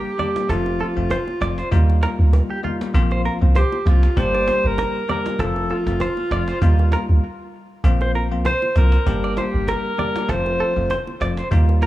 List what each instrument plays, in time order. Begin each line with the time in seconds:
Already playing: tine electric piano G3 A#3 D4 G4, alto saxophone G4
0.05 cajon slap
0.18 tine electric piano G3 A#3 D4 G4, alto saxophone G4, clean electric guitar D5, low conga
0.36 cajon slap, low bongo
0.49 log drum bass F1, tine electric piano F3 A3 C4 F4, alto saxophone F4, clean electric guitar A4, cajon bass, low conga
0.66 cajon slap, high bongo
0.80 alto saxophone F4, clean electric guitar A4, cajon slap, low bongo
0.96 log drum bass F1, tine electric piano F3 A3 C4 F4, cajon slap
1.10 clean electric guitar C5, cajon bass, high bongo
1.27 cajon slap, low bongo
1.40 log drum bass F1, tine electric piano F3 A3 C4 F4, clean electric guitar D5, cajon slap
1.58 clean electric guitar C5, cajon slap
1.71 log drum bass D#2, tine electric piano G3 A#3 D#4 F4, cajon bass, low conga
1.89 cajon slap, high bongo
2.03 clean electric guitar A#4, cajon slap, low bongo
2.19 log drum bass D2, cajon slap
2.33 cajon bass, high bongo
2.50 clean electric guitar G4, cajon slap
2.63 tine electric piano G3 A#3 D#4 F4, clean electric guitar F4, cajon slap, low conga
2.81 cajon slap, low bongo
2.94 log drum bass A#1, tine electric piano F3 A#3 C4 F4, cajon bass, low conga
3.11 clean electric guitar C5, cajon slap, high bongo
3.25 clean electric guitar A#4, cajon slap, low bongo
3.41 log drum bass C2, tine electric piano F3 A#3 C4 F4, cajon slap
3.55 alto saxophone G4, clean electric guitar C5, cajon bass, high bongo
3.72 cajon slap, low bongo
3.86 log drum bass C2, tine electric piano F3 A#3 C4 F4, alto saxophone F4, cajon slap
4.03 cajon slap
4.17 log drum bass G1, tine electric piano G3 A#3 D4 G4, alto saxophone C5, cajon bass, low conga
4.34 clean electric guitar D5, cajon slap, high bongo
4.48 clean electric guitar C5, cajon slap, low bongo
4.64 log drum bass G1, alto saxophone A#4, cajon slap
4.78 clean electric guitar A#4, cajon bass, high bongo
4.95 cajon slap
5.09 tine electric piano G3 A#3 D4 G4, alto saxophone A#4, clean electric guitar D5, cajon slap, low conga
5.26 cajon slap, low bongo
5.39 log drum bass F1, tine electric piano F3 A3 C4 F4, clean electric guitar A4, alto saxophone A4, cajon bass, low conga
5.55 cajon slap, high bongo
5.70 alto saxophone F4, clean electric guitar A4, cajon slap, low bongo
5.86 log drum bass F1, tine electric piano F3 A3 C4 F4, cajon slap
6.00 clean electric guitar C5, cajon bass, high bongo
6.17 cajon slap, low bongo
6.31 log drum bass F1, tine electric piano F3 A3 C4 F4, clean electric guitar D5, cajon slap
6.48 clean electric guitar C5, cajon slap
6.61 log drum bass D#2, tine electric piano G3 A#3 D#4 F4, cajon bass, low conga
6.78 cajon slap, high bongo
6.92 clean electric guitar A#4, cajon slap, low bongo
7.09 log drum bass D2, cajon slap
7.84 log drum bass A#1, tine electric piano F3 A#3 C4 F4, cajon bass, low conga
8.00 clean electric guitar C5, cajon slap, high bongo
8.15 clean electric guitar A#4, cajon slap, low bongo
8.31 log drum bass C2, tine electric piano F3 A#3 C4 F4, cajon slap
8.45 clean electric guitar C5, alto saxophone C5, cajon bass, high bongo
8.62 cajon slap, low bongo
8.76 log drum bass C2, tine electric piano F3 A#3 C4 F4, alto saxophone A#4, cajon slap
8.92 cajon slap
9.06 log drum bass G1, tine electric piano G3 A#3 D4 G4, cajon bass, low conga
9.23 clean electric guitar D5, cajon slap, high bongo
9.37 alto saxophone G4, clean electric guitar C5, cajon slap, low bongo
9.54 log drum bass G1, cajon slap
9.68 clean electric guitar A#4, alto saxophone A#4, cajon bass, high bongo
9.84 cajon slap
9.98 tine electric piano G3 A#3 D4 G4, clean electric guitar D5, cajon slap, low conga
10.16 cajon slap, low bongo
10.28 log drum bass F1, tine electric piano F3 A3 C4 F4, clean electric guitar A4, alto saxophone C5, cajon bass, low conga
10.45 cajon slap, high bongo
10.60 clean electric guitar A4, cajon slap, low bongo
10.76 log drum bass F1, tine electric piano F3 A3 C4 F4, cajon slap
10.90 clean electric guitar C5, cajon bass, high bongo
11.07 cajon slap, low bongo
11.21 log drum bass F1, tine electric piano F3 A3 C4 F4, clean electric guitar D5, cajon slap
11.37 clean electric guitar C5, cajon slap
11.51 log drum bass D#2, tine electric piano G3 A#3 D#4 F4, cajon bass, low conga
11.68 cajon slap, high bongo
11.82 clean electric guitar A#4, cajon slap, low bongo